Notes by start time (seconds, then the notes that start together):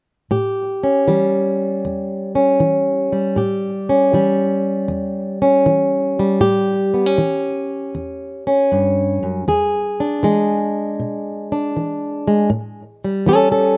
0.31 A2 G4
0.83 C#4
1.08 E3 G3
1.85 E2
2.35 C#4
2.60 E3
3.12 G3
3.36 A2 G4
3.89 C#4
4.13 E3 G3
4.88 E2
5.42 C#4
5.66 E3
6.19 G3
6.41 A2 G4
6.94 B3
7.06 C#4
7.18 E3
7.95 E2
8.47 C#4
8.72 G2
9.23 F#2
9.48 E2 G#4
10.00 D4
10.23 E3 G#3
11.00 B2
11.52 D4
11.77 E3
12.28 G#3
12.50 A2
13.04 G3
13.26 E3 C#4 A4
13.51 C#4 A4